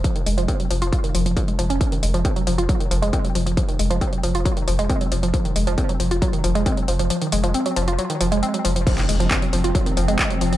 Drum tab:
CC |----------------|----------------|----------------|----------------|
HH |xxoxxxoxxxoxxxox|xxoxxxoxxxoxxxox|xxoxxxoxxxoxxxox|xxoxxxoxxxoxxxox|
CP |----------------|----------------|----------------|----------------|
BD |o---o---o---o---|o---o---o---o---|o---o---o---o---|o---o---o---o---|

CC |----------------|x---------------|
HH |xxoxxxoxxxoxxxox|xxoxxxoxxxoxxxox|
CP |----------------|-x--x-------x---|
BD |----------------|o---o---o---o---|